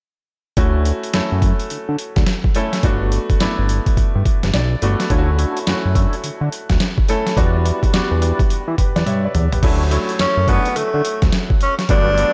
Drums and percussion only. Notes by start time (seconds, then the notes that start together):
0.57 kick, closed hi-hat
0.85 closed hi-hat
1.03 closed hi-hat
1.13 snare, closed hi-hat
1.42 kick, closed hi-hat
1.59 closed hi-hat
1.70 closed hi-hat
1.99 closed hi-hat
2.16 kick, snare, closed hi-hat
2.27 snare, closed hi-hat
2.44 kick
2.55 closed hi-hat
2.73 snare, closed hi-hat
2.83 kick, closed hi-hat
3.12 closed hi-hat
3.30 kick, closed hi-hat
3.40 snare, closed hi-hat
3.69 closed hi-hat
3.86 kick, closed hi-hat
3.97 kick, closed hi-hat
4.25 kick, closed hi-hat
4.43 snare, closed hi-hat
4.54 snare, closed hi-hat
4.82 closed hi-hat
5.00 snare, closed hi-hat
5.10 kick, closed hi-hat
5.39 closed hi-hat
5.57 closed hi-hat
5.67 snare, closed hi-hat
5.95 kick, closed hi-hat
6.13 closed hi-hat
6.24 closed hi-hat
6.52 closed hi-hat
6.69 kick, snare, closed hi-hat
6.80 snare, closed hi-hat
6.98 kick
7.08 closed hi-hat
7.27 snare, closed hi-hat
7.37 kick, closed hi-hat
7.66 closed hi-hat
7.83 kick, closed hi-hat
7.94 snare, closed hi-hat
8.22 closed hi-hat
8.39 kick, closed hi-hat
8.50 closed hi-hat
8.78 kick, closed hi-hat
8.96 snare, closed hi-hat
9.07 closed hi-hat, high tom
9.35 closed hi-hat, mid tom
9.52 closed hi-hat, floor tom
9.63 kick, closed hi-hat, crash
9.91 closed hi-hat
10.09 closed hi-hat
10.19 snare, closed hi-hat
10.48 kick, closed hi-hat
10.65 closed hi-hat
10.76 closed hi-hat
11.05 closed hi-hat
11.22 kick, snare, closed hi-hat
11.32 snare, closed hi-hat
11.50 kick
11.61 closed hi-hat
11.79 snare, closed hi-hat
11.89 kick, closed hi-hat
12.18 closed hi-hat